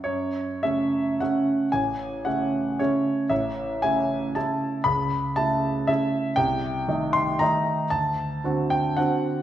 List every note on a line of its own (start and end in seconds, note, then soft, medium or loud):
0.04 0.61 F#2 soft
0.04 0.62 C#5 medium
0.63 1.17 C#3 soft
0.63 1.17 A3 soft
0.63 1.17 C#4 soft
0.63 1.20 E5 medium
1.20 1.68 C#3 soft
1.20 1.68 A3 soft
1.20 1.69 C#4 soft
1.20 1.71 F#5 medium
1.72 2.24 A1 soft
1.72 2.25 G#5 medium
2.25 2.76 C#3 soft
2.25 2.76 A3 soft
2.25 2.76 C#4 soft
2.25 2.79 F#5 medium
2.79 3.26 C#3 soft
2.79 3.27 A3 soft
2.79 3.27 C#4 soft
2.79 3.30 C#5 medium
3.29 3.82 A1 medium
3.29 3.83 E5 medium
3.82 4.32 C#3 soft
3.82 4.32 A3 soft
3.82 4.32 E4 soft
3.82 4.35 G#5 medium
4.35 4.81 C#3 soft
4.35 4.81 A3 soft
4.35 4.81 E4 medium
4.35 4.84 A5 medium
4.84 5.36 C#2 soft
4.84 5.36 B5 medium
5.36 5.85 C#3 soft
5.36 5.85 A3 soft
5.36 5.85 E4 soft
5.36 5.88 A5 medium
5.87 6.33 C#3 soft
5.87 6.33 A3 soft
5.87 6.34 E4 medium
5.87 6.37 E5 medium
6.36 6.87 C2 medium
6.36 7.14 G5 medium
6.88 7.37 D#3 soft
6.88 7.37 A3 soft
6.88 7.37 D#4 soft
7.13 7.40 C6 medium
7.39 7.87 D#3 soft
7.39 7.87 A3 soft
7.39 7.87 D#4 medium
7.39 7.90 A#5 medium
7.90 8.42 D2 soft
7.90 8.70 A5 medium
8.44 8.94 D3 soft
8.44 8.95 C4 soft
8.44 8.95 F#4 soft
8.70 8.97 G5 medium
8.97 9.42 D3 soft
8.97 9.42 C4 soft
8.97 9.42 F#4 soft
8.97 9.42 F#5 medium